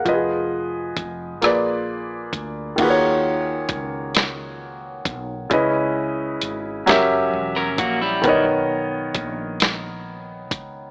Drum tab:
CC |------|x-----|------|------|
HH |x-xx-x|x-xx-x|x-xx-x|x-xx-x|
SD |---r--|---o--|---o--|---o--|
BD |o-o--o|o-o--o|o----o|o-o--o|